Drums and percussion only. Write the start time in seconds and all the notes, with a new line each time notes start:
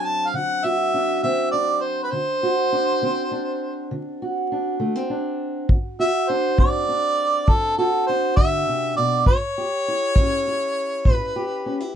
5.69 kick
6.58 kick
7.48 kick
8.37 kick
9.26 kick
10.16 kick
11.05 kick